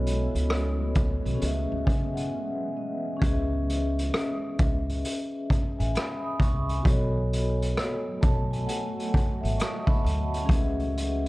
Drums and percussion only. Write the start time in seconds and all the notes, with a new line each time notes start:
0.06 closed hi-hat
0.35 closed hi-hat
0.50 cross-stick, closed hi-hat
0.95 kick, closed hi-hat
1.26 closed hi-hat
1.41 closed hi-hat
1.87 kick, closed hi-hat
2.17 closed hi-hat
3.22 kick, closed hi-hat
3.69 closed hi-hat
3.99 closed hi-hat
4.14 cross-stick, closed hi-hat
4.59 kick, closed hi-hat
4.89 closed hi-hat
5.05 closed hi-hat
5.50 kick, closed hi-hat
5.80 closed hi-hat
5.95 cross-stick, closed hi-hat
6.40 kick, closed hi-hat
6.69 closed hi-hat
6.85 kick, closed hi-hat
7.33 closed hi-hat
7.62 closed hi-hat
7.77 cross-stick, closed hi-hat
8.22 kick, closed hi-hat
8.53 closed hi-hat
8.68 closed hi-hat
8.99 closed hi-hat
9.14 kick, closed hi-hat
9.45 closed hi-hat
9.59 cross-stick, closed hi-hat
9.87 kick
10.06 closed hi-hat
10.34 closed hi-hat
10.49 kick, closed hi-hat
10.79 closed hi-hat
10.97 closed hi-hat